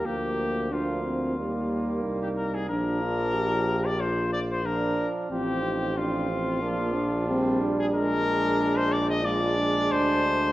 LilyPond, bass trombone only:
\new Staff \with { instrumentName = "Bass trombone" } { \clef bass \time 4/4 \key bes \mixolydian \tempo 4 = 91 d,2 ees,4 c,4 | bes,,2.~ bes,,8 r8 | a,,2 bes,,2 | bes,,2. d,4 | }